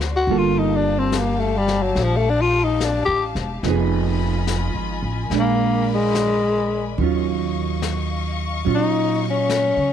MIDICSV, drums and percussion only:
0, 0, Header, 1, 2, 480
1, 0, Start_track
1, 0, Tempo, 835655
1, 169, Time_signature, 4, 2, 24, 8
1, 5703, End_track
2, 0, Start_track
2, 0, Title_t, "Drums"
2, 4, Note_on_c, 9, 38, 26
2, 61, Note_off_c, 9, 38, 0
2, 164, Note_on_c, 9, 25, 32
2, 645, Note_on_c, 9, 38, 42
2, 645, Note_on_c, 9, 44, 50
2, 703, Note_off_c, 9, 38, 0
2, 703, Note_off_c, 9, 44, 0
2, 964, Note_on_c, 9, 38, 28
2, 1022, Note_off_c, 9, 38, 0
2, 1126, Note_off_c, 9, 25, 0
2, 1126, Note_on_c, 9, 25, 34
2, 1126, Note_on_c, 9, 38, 32
2, 1183, Note_off_c, 9, 38, 0
2, 1612, Note_on_c, 9, 38, 45
2, 1612, Note_on_c, 9, 44, 53
2, 1669, Note_off_c, 9, 38, 0
2, 1669, Note_off_c, 9, 44, 0
2, 1929, Note_on_c, 9, 38, 26
2, 1986, Note_off_c, 9, 38, 0
2, 2088, Note_off_c, 9, 25, 0
2, 2088, Note_on_c, 9, 25, 35
2, 2088, Note_on_c, 9, 38, 32
2, 2145, Note_off_c, 9, 38, 0
2, 2570, Note_on_c, 9, 38, 42
2, 2570, Note_on_c, 9, 44, 49
2, 2627, Note_off_c, 9, 38, 0
2, 2627, Note_off_c, 9, 44, 0
2, 3049, Note_off_c, 9, 25, 0
2, 3049, Note_on_c, 9, 25, 41
2, 3049, Note_on_c, 9, 38, 32
2, 3107, Note_off_c, 9, 38, 0
2, 3532, Note_on_c, 9, 38, 46
2, 3532, Note_on_c, 9, 44, 47
2, 3589, Note_off_c, 9, 38, 0
2, 3589, Note_off_c, 9, 44, 0
2, 4016, Note_off_c, 9, 25, 0
2, 4016, Note_on_c, 9, 25, 33
2, 4493, Note_on_c, 9, 38, 44
2, 4493, Note_on_c, 9, 44, 50
2, 4551, Note_off_c, 9, 38, 0
2, 4551, Note_off_c, 9, 44, 0
2, 4975, Note_off_c, 9, 25, 0
2, 4975, Note_on_c, 9, 25, 43
2, 5454, Note_on_c, 9, 38, 47
2, 5454, Note_on_c, 9, 44, 53
2, 5512, Note_off_c, 9, 38, 0
2, 5512, Note_off_c, 9, 44, 0
2, 5703, Note_off_c, 9, 25, 0
2, 5703, End_track
0, 0, End_of_file